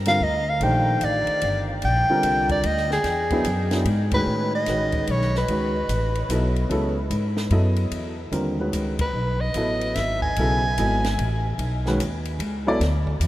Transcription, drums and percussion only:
0.05 snare soft
0.05 ride medium
0.61 ride medium
1.01 hi-hat pedal soft
1.01 ride medium
1.27 ride soft
1.41 ride medium
1.82 ride medium
2.23 hi-hat pedal soft
2.23 ride medium
2.49 kick soft
2.49 ride soft
2.63 ride medium
2.77 snare soft
2.91 snare soft
3.04 snare soft
3.04 ride medium
3.30 kick soft
3.30 ride soft
3.44 hi-hat pedal soft
3.44 ride medium
3.71 snare medium
3.71 ride soft
3.85 ride medium
4.11 kick medium
4.11 ride medium
4.66 snare soft
4.66 hi-hat pedal soft
4.66 ride medium
4.92 kick medium
4.92 ride soft
5.07 ride medium
5.21 snare soft
5.35 snare soft
5.48 ride medium
5.89 hi-hat pedal medium
5.89 ride medium
6.15 ride soft
6.30 hi-hat pedal medium
6.30 ride medium
6.56 ride soft
6.71 ride medium
7.11 hi-hat pedal soft
7.11 ride medium
7.37 snare soft
7.50 ride medium
7.76 ride soft
7.91 ride medium
8.32 hi-hat pedal soft
8.32 ride medium
8.73 hi-hat pedal medium
8.73 ride medium
8.99 kick medium
8.99 ride medium
9.54 hi-hat pedal soft
9.54 ride medium
9.81 ride soft
9.95 snare soft
9.95 ride medium
10.22 kick medium
10.36 ride medium
10.78 hi-hat pedal medium
10.78 ride medium
11.04 snare medium
11.04 ride soft
11.19 ride medium
11.59 ride medium
11.86 snare soft
12.00 hi-hat pedal medium
12.00 ride medium
12.25 ride soft
12.40 ride medium
12.81 snare soft
12.81 ride medium
13.07 kick medium
13.21 hi-hat pedal medium
13.21 ride medium

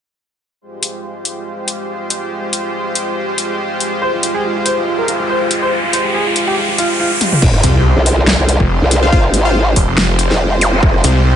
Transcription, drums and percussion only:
0.83 closed hi-hat medium
1.25 closed hi-hat medium
1.68 closed hi-hat medium
2.10 closed hi-hat medium
2.53 closed hi-hat medium
2.95 closed hi-hat medium
3.38 closed hi-hat medium
3.80 closed hi-hat medium
4.23 closed hi-hat medium
4.66 closed hi-hat medium
5.08 closed hi-hat medium
5.51 closed hi-hat medium
5.93 closed hi-hat medium
6.36 closed hi-hat medium
6.78 closed hi-hat medium
7.21 closed hi-hat medium
7.21 high tom medium
7.32 mid tom medium
7.42 kick loud
7.42 crash loud
7.54 cross-stick medium
7.64 closed hi-hat medium
8.06 open hi-hat loud
8.27 snare loud
8.49 closed hi-hat medium
8.60 kick medium
8.60 cross-stick medium
8.91 closed hi-hat medium
9.12 kick loud
9.24 cross-stick medium
9.34 closed hi-hat medium
9.76 kick medium
9.76 open hi-hat loud
9.98 snare loud
10.19 closed hi-hat medium
10.30 cross-stick soft
10.30 snare soft
10.61 closed hi-hat medium
10.83 kick loud
10.94 cross-stick medium
11.04 closed hi-hat medium

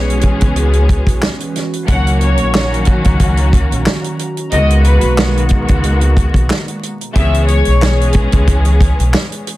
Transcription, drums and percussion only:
0.10 closed hi-hat soft
0.21 kick medium
0.21 closed hi-hat medium
0.41 kick loud
0.41 closed hi-hat medium
0.56 closed hi-hat medium
0.73 closed hi-hat medium
0.89 kick loud
0.89 closed hi-hat medium
1.07 kick medium
1.07 closed hi-hat medium
1.22 snare loud
1.22 clap loud
1.40 closed hi-hat medium
1.56 snare soft
1.56 closed hi-hat medium
1.73 closed hi-hat medium
1.88 kick loud
1.88 closed hi-hat loud
2.07 closed hi-hat medium
2.21 closed hi-hat medium
2.37 closed hi-hat medium
2.55 snare loud
2.55 clap medium
2.74 closed hi-hat soft
2.85 kick medium
2.85 closed hi-hat medium
3.04 kick loud
3.04 closed hi-hat medium
3.20 kick medium
3.20 closed hi-hat medium
3.37 closed hi-hat medium
3.53 kick loud
3.53 closed hi-hat medium
3.72 closed hi-hat medium
3.86 snare loud
3.86 clap medium
4.04 closed hi-hat medium
4.19 closed hi-hat medium
4.37 closed hi-hat medium
4.51 closed hi-hat loud
4.70 closed hi-hat medium
4.84 closed hi-hat medium
5.01 closed hi-hat medium
5.18 snare loud
5.18 clap medium
5.37 closed hi-hat soft
5.49 kick medium
5.49 closed hi-hat medium
5.68 kick loud
5.68 closed hi-hat medium
5.84 closed hi-hat medium
6.01 closed hi-hat medium
6.17 kick loud
6.17 closed hi-hat medium
6.34 kick medium
6.34 closed hi-hat medium
6.50 snare loud
6.50 clap medium
6.68 closed hi-hat medium
6.83 closed hi-hat medium
7.01 closed hi-hat medium
7.15 kick loud
7.15 closed hi-hat loud
7.34 closed hi-hat medium
7.48 closed hi-hat medium
7.65 closed hi-hat medium
7.82 snare loud
7.82 clap loud
8.01 closed hi-hat soft
8.13 kick medium
8.13 closed hi-hat medium
8.32 kick loud
8.32 closed hi-hat medium
8.47 kick loud
8.47 closed hi-hat loud
8.65 closed hi-hat medium
8.81 kick loud
8.81 closed hi-hat medium
9.00 closed hi-hat medium
9.14 snare loud
9.14 clap loud
9.32 closed hi-hat medium
9.47 closed hi-hat medium

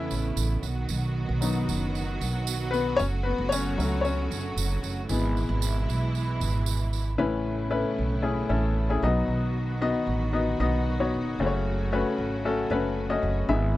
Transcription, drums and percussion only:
0.11 tambourine medium
0.37 tambourine medium
0.63 tambourine soft
0.89 tambourine soft
1.42 tambourine medium
1.69 tambourine soft
1.95 tambourine soft
2.21 tambourine medium
2.47 tambourine medium
2.74 tambourine soft
2.99 tambourine soft
3.52 tambourine medium
3.80 tambourine soft
4.05 tambourine soft
4.32 tambourine medium
4.58 tambourine medium
4.84 tambourine soft
5.09 tambourine medium
5.37 tambourine soft
5.62 tambourine medium
5.90 tambourine soft
6.15 tambourine soft
6.41 tambourine medium
6.66 tambourine medium
6.93 tambourine soft

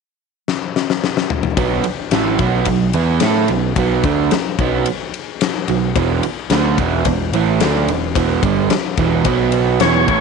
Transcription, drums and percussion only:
0.48 snare medium
0.76 snare medium
0.90 snare medium
1.04 snare loud
1.17 snare loud
1.30 mid tom medium
1.43 mid tom medium
1.57 kick loud
1.57 ride medium
1.84 ride medium
2.11 snare loud
2.11 ride medium
2.39 kick loud
2.39 ride medium
2.65 kick medium
2.65 ride loud
2.93 ride medium
3.20 snare loud
3.20 ride loud
3.48 ride medium
3.76 kick medium
3.76 ride medium
4.03 kick loud
4.03 ride medium
4.31 snare loud
4.31 ride medium
4.59 kick loud
4.59 ride medium
4.86 ride medium
5.14 ride medium
5.41 snare loud
5.41 ride medium
5.68 ride medium
5.96 kick loud
5.96 ride medium
5.96 cowbell medium
6.23 ride medium
6.50 snare loud
6.50 ride medium
6.50 cowbell medium
6.78 kick loud
6.78 ride medium
7.05 kick medium
7.05 ride medium
7.05 cowbell medium
7.33 ride medium
7.33 cowbell medium
7.60 snare loud
7.60 ride loud
7.60 cowbell medium
7.88 ride medium
8.15 kick loud
8.15 ride medium
8.15 cowbell medium
8.43 kick loud
8.43 ride medium
8.70 snare loud
8.70 ride medium
8.70 cowbell medium
8.97 kick loud
8.97 ride medium
9.25 kick loud
9.25 ride medium
9.25 cowbell loud
9.52 ride medium
9.52 cowbell medium
9.80 snare loud
9.80 ride medium
9.80 cowbell medium
10.08 kick loud
10.08 ride medium

